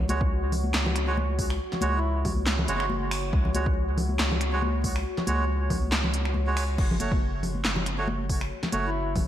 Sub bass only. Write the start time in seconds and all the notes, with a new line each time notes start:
Already playing: C#2
0.74 C#2
1.82 C#2
2.25 C#2
2.68 F#1
3.33 C#2
4.19 C#2
5.27 C#2
5.70 C#2
6.35 C#2
6.78 F#1
7.65 F#1
8.72 F#1
9.16 F#1